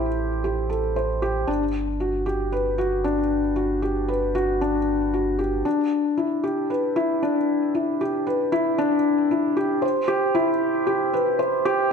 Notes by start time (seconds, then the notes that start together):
Already playing: A1 E4 G4 A4 C5
0.44 G4
0.70 A4
0.96 C5
1.22 G4
1.47 G1 D4
2.00 F#4
2.26 G4
2.52 B4
2.78 F#4
3.04 D4
3.56 F#4
3.82 G4
4.08 B4
4.35 F#4
4.61 D4
5.14 F#4
5.39 G4
5.65 D4
6.17 E4
6.44 G4
6.70 B4
6.96 E4
7.23 D4
7.75 E4
8.01 G4
8.27 B4
8.52 E4
8.78 D4
9.31 E4
9.57 G4
9.82 C5
10.08 G4
10.35 E4
10.87 G4
11.13 B4
11.39 C5
11.65 G4